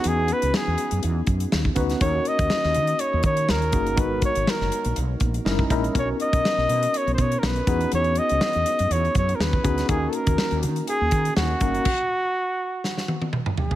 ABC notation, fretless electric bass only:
X:1
M:4/4
L:1/16
Q:"Swing 16ths" 1/4=122
K:D#phr
V:1 name="Fretless electric bass" clef=bass
E,,3 C,, z E,, z F,, E,,2 F,,2 D,,2 =D,,2 | D,,2 z D,, z D,, D,2 z D,, D,2 D,,2 =G,,,2 | G,,,3 G,,, z F,,, z A,,, B,,,2 A,,,2 F,,,2 A,,,2 | B,,,2 z B,,, z B,,, B,,2 z B,,, B,,2 B,,,2 E,,2 |
E,,3 C,, z E,, z F,, E,,2 F,,2 D,,2 =D,,2 | D,,2 z D,, z D,, D,2 z D,, D,2 D,,2 =G,,,2 | z16 |]